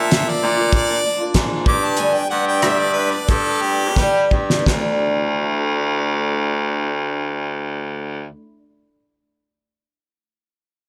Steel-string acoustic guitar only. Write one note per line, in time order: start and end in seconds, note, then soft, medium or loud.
0.00 0.11 F3 medium
0.00 0.12 A#3 medium
0.00 0.12 D4 medium
0.00 0.13 F4 medium
0.12 0.42 A#2 medium
0.12 0.40 F3 medium
0.12 0.41 A#3 medium
0.12 0.42 D4 medium
0.12 0.43 F4 medium
0.41 0.57 F3 medium
0.41 0.57 A#3 medium
0.41 0.57 D4 medium
0.41 0.55 F4 medium
0.56 0.89 A#3 soft
0.56 0.88 D4 soft
0.56 0.86 F4 medium
0.87 1.04 A#3 soft
0.87 1.04 D4 soft
0.87 1.03 F4 medium
1.04 1.19 F3 medium
1.04 1.20 A#3 medium
1.04 1.19 D4 medium
1.04 1.18 F4 medium
1.19 1.34 A#3 soft
1.19 1.35 D4 soft
1.19 1.35 F4 medium
1.34 1.66 A#2 medium
1.34 1.65 F3 medium
1.34 1.66 A#3 medium
1.34 1.66 D4 medium
1.34 1.67 F4 medium
1.66 1.98 G3 medium
1.66 1.98 B3 medium
1.66 1.99 D4 medium
1.66 1.99 G4 medium
1.98 2.14 G2 medium
1.98 2.14 D3 medium
1.98 2.14 G3 medium
1.98 2.15 B3 medium
1.98 2.13 D4 medium
1.98 2.13 G4 medium
2.14 2.29 G3 soft
2.14 2.30 B3 soft
2.14 2.30 D4 soft
2.14 2.30 G4 soft
2.30 2.62 G3 medium
2.30 2.63 B3 medium
2.30 2.63 D4 medium
2.30 2.63 G4 medium
2.62 2.95 G2 medium
2.62 2.96 D3 medium
2.62 2.94 G3 medium
2.62 2.96 B3 medium
2.62 2.96 D4 medium
2.62 2.96 G4 medium
2.96 3.12 G3 medium
2.96 3.13 B3 soft
2.96 3.12 D4 medium
2.96 3.11 G4 medium
3.13 3.47 G3 soft
3.13 3.47 B3 soft
3.13 3.46 D4 soft
3.13 3.45 G4 soft
3.46 3.61 G3 soft
3.46 3.63 B3 soft
3.46 3.63 D4 soft
3.46 3.63 G4 soft
3.62 3.79 G3 soft
3.62 3.80 B3 medium
3.62 3.80 D4 medium
3.62 3.78 G4 medium
3.79 3.96 G3 soft
3.79 3.96 B3 soft
3.79 3.97 D4 soft
3.79 3.96 G4 soft
3.96 4.31 G2 medium
3.96 4.31 D3 medium
3.96 4.29 G3 medium
3.96 4.30 B3 medium
3.96 4.31 D4 medium
3.96 4.32 G4 medium
4.30 4.66 G3 soft
4.30 4.66 B3 medium
4.30 4.67 D4 medium
4.30 4.68 G4 medium
4.59 8.29 D3 medium
4.66 8.36 F#3 medium
4.72 8.41 A3 medium
4.76 8.46 D4 medium
4.82 8.51 E4 medium